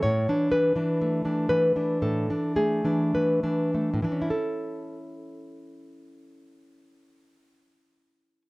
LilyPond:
\new Staff \with { instrumentName = "Nylon-string guitar" } { \time 4/4 \key a \major \tempo 4 = 57 << { cis''8 b'4 b'8 a'8 gis'8 b'8 r8 | <a, e cis' e' a'>1 | } \\ { a,16 <e d'>16 e16 <e d'>16 a16 <e d'>16 e16 <e d'>16 a,16 <e d'>16 a16 <e d'>16 e16 <e d'>16 a16 <e d'>16 | r1 | } >> }